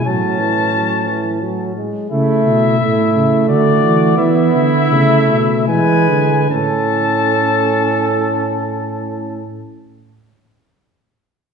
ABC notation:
X:1
M:3/4
L:1/8
Q:1/4=78
K:A
V:1 name="Trumpet"
a4- a z | e4 d2 | e4 g2 | a6- |
a6 |]
V:2 name="Trumpet"
C4- C z | E2 E2 F2 | E4 B2 | A6- |
A6 |]
V:3 name="Trombone" clef=bass
F, E, F, E, F, G, | A,2 A,4 | B,2 A,2 G,2 | C6- |
C6 |]
V:4 name="Tuba" clef=bass
A,,4- A,, z | C, B,, A,, C, D, E, | E, D, C, B,, E, D, | A,,6- |
A,,6 |]